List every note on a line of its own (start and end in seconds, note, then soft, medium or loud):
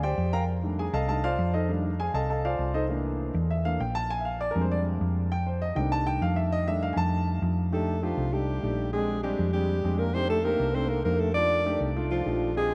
0.00 0.15 D2 loud
0.00 0.31 G4 medium
0.00 0.32 C5 medium
0.00 0.31 D5 medium
0.00 0.31 G5 loud
0.18 0.88 F2 medium
0.33 0.43 A#4 medium
0.33 0.42 F5 medium
0.33 0.42 G5 medium
0.33 0.42 A#5 loud
0.63 0.83 D#3 medium
0.63 0.84 G3 medium
0.63 0.84 A3 medium
0.63 0.84 D4 medium
0.79 0.94 G#4 medium
0.79 0.94 G#5 medium
0.93 1.36 C2 loud
0.93 1.07 A4 medium
0.93 1.08 D#5 medium
0.93 1.07 F5 medium
0.93 1.07 A5 loud
1.08 1.22 D#3 medium
1.08 1.22 G3 soft
1.08 1.22 A3 soft
1.08 1.22 D4 medium
1.08 1.23 A4 medium
1.08 1.24 D#5 medium
1.08 1.22 F5 medium
1.08 1.23 A5 medium
1.24 1.52 F4 medium
1.24 1.52 C5 medium
1.24 1.52 D5 medium
1.24 1.52 F5 loud
1.39 2.09 F2 loud
1.54 1.69 D#4 medium
1.54 1.69 A4 medium
1.54 1.69 C5 medium
1.54 1.69 D#5 medium
1.68 1.89 D#3 medium
1.68 1.89 G3 medium
1.68 1.89 A3 medium
1.68 1.89 D4 medium
2.00 2.14 G#4 medium
2.00 2.14 G#5 loud
2.14 2.56 C2 medium
2.14 2.29 A4 medium
2.14 2.29 D#5 medium
2.14 2.29 F5 medium
2.14 2.28 A5 loud
2.30 2.45 A4 medium
2.30 2.45 D#5 medium
2.30 2.43 F5 medium
2.30 2.44 A5 medium
2.45 2.73 F4 medium
2.45 2.73 C5 medium
2.45 2.73 D5 medium
2.45 2.73 F5 loud
2.59 3.29 C2 medium
2.74 2.84 D#4 medium
2.74 2.84 A4 medium
2.74 2.84 C5 medium
2.74 2.83 D#5 medium
2.89 3.32 E3 medium
2.89 3.33 A3 medium
2.89 3.33 A#3 medium
2.89 3.33 D4 medium
3.34 3.77 E2 loud
3.51 3.65 E5 medium
3.65 3.79 E3 medium
3.65 3.79 A3 soft
3.65 3.79 A#3 medium
3.65 3.79 D4 medium
3.65 3.80 F5 loud
3.80 4.50 A#1 medium
3.80 3.95 G5 medium
3.95 4.10 A5 loud
4.10 4.25 G#5 loud
4.21 4.23 E5 medium
4.25 4.40 F5 medium
4.41 4.51 D5 loud
4.51 5.27 G3 medium
4.51 4.61 A#4 loud
4.55 4.98 F2 loud
4.55 5.27 G#3 medium
4.55 5.27 C4 medium
4.55 5.28 D4 medium
4.61 4.71 C5 medium
4.72 4.80 D5 medium
5.01 5.71 F2 loud
5.32 5.46 G5 loud
5.46 5.61 C5 medium
5.62 5.76 D#5 loud
5.75 6.19 C2 loud
5.75 6.65 D#3 medium
5.75 6.66 G3 medium
5.75 6.66 A3 medium
5.75 6.67 D4 medium
5.75 5.91 G5 loud
5.92 6.06 A5 loud
6.07 6.21 G5 loud
6.21 6.92 F2 loud
6.21 6.37 F5 loud
6.36 6.51 E5 loud
6.52 6.67 D#5 loud
6.67 7.69 D#3 medium
6.67 7.69 G3 medium
6.67 7.69 A3 medium
6.67 7.69 D4 medium
6.67 6.82 E5 loud
6.83 6.97 F5 loud
6.93 7.39 F2 loud
6.93 6.95 G#5 medium
6.97 7.40 A5 loud
7.42 8.12 F2 loud
7.72 7.94 A3 medium
7.72 8.05 A3 medium
7.72 7.94 D4 medium
7.72 7.94 D#4 medium
7.72 7.94 G4 medium
7.72 8.05 A4 medium
8.03 8.34 F3 medium
8.03 8.24 A3 medium
8.03 8.24 D4 medium
8.03 8.24 D#4 medium
8.03 8.34 F4 medium
8.03 8.24 G4 medium
8.17 8.60 C2 medium
8.33 8.92 G3 medium
8.33 8.54 A3 medium
8.33 8.54 D4 medium
8.33 8.54 D#4 medium
8.33 8.92 G4 medium
8.33 8.55 G4 medium
8.63 9.33 A#1 medium
8.63 8.84 A3 medium
8.63 8.85 D4 medium
8.63 8.85 D#4 medium
8.63 8.85 G4 medium
8.93 9.21 G#3 medium
8.93 9.15 G#3 medium
8.93 9.15 C4 medium
8.93 9.15 D4 medium
8.93 9.15 G4 medium
8.93 9.22 G#4 medium
9.22 9.51 G3 medium
9.22 9.45 G#3 medium
9.22 9.45 C4 medium
9.22 9.45 D4 medium
9.22 9.52 G4 medium
9.22 9.45 G4 loud
9.39 9.81 F2 medium
9.53 10.00 G3 medium
9.53 9.75 G#3 medium
9.53 9.75 C4 medium
9.53 9.75 D4 medium
9.53 10.01 G4 medium
9.53 9.75 G4 medium
9.84 10.55 F2 medium
9.84 10.06 G#3 medium
9.84 10.06 C4 medium
9.84 10.06 D4 medium
9.84 10.06 G4 medium
9.98 10.15 A#3 medium
9.98 10.16 A#4 medium
10.13 10.36 A3 medium
10.13 10.28 C4 medium
10.13 10.36 D4 medium
10.13 10.36 D#4 medium
10.13 10.36 G4 medium
10.13 10.29 C5 loud
10.28 10.45 A3 medium
10.28 10.46 A4 loud
10.44 10.66 A3 medium
10.44 10.75 A#3 medium
10.44 10.66 D4 medium
10.44 10.66 D#4 medium
10.44 10.66 G4 medium
10.44 10.76 A#4 loud
10.60 11.02 C2 medium
10.73 10.96 A3 medium
10.73 10.90 C4 medium
10.73 10.97 D4 medium
10.73 10.97 D#4 medium
10.73 10.97 A4 medium
10.73 10.90 C5 medium
10.89 11.02 A#3 medium
10.89 11.04 A#4 medium
11.03 11.76 F2 medium
11.03 11.27 A3 medium
11.03 11.20 A#3 medium
11.03 11.27 D4 medium
11.03 11.27 D#4 medium
11.03 11.27 G4 medium
11.03 11.22 A#4 loud
11.19 11.33 A3 medium
11.19 11.34 A4 medium
11.34 11.57 A3 medium
11.34 11.80 D4 medium
11.34 11.57 D4 medium
11.34 11.57 D#4 medium
11.34 11.57 F4 medium
11.34 11.80 D5 loud
11.66 11.87 A3 medium
11.66 11.87 D4 medium
11.66 11.87 D#4 medium
11.66 11.87 G4 medium
11.80 12.23 C2 medium
11.96 12.17 A3 medium
11.96 12.17 D4 medium
11.96 12.18 D#4 medium
11.96 12.18 F4 medium
12.10 12.53 F3 medium
12.10 12.53 F4 medium
12.26 12.74 A#1 medium
12.26 12.47 A3 medium
12.26 12.47 D4 medium
12.26 12.47 D#4 medium
12.26 12.48 G4 medium
12.56 12.74 G#3 medium
12.56 12.74 C4 medium
12.56 12.74 D4 medium
12.56 12.74 G4 medium
12.56 12.74 G#4 loud